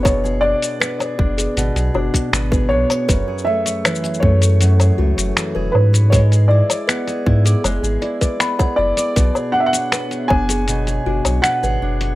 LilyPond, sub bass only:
\new Staff \with { instrumentName = "Sub bass" } { \clef bass \time 4/4 \key b \dorian \tempo 4 = 79 fis,,8. r8. fis,,8 gis,,16 b,,16 fis,,16 r16 gis,,8 b,,16 r16 | fis,,16 r4 r16 fis,4 cis,16 fis,,16 r16 e,,16 gis,8~ | gis,8. r8. gis,8 fis,,16 gis,,16 r4 fis,,16 r16 | b,,16 r4 r16 fis,,4 fis,,16 b,,16 r16 gis,,16 fis,,8 | }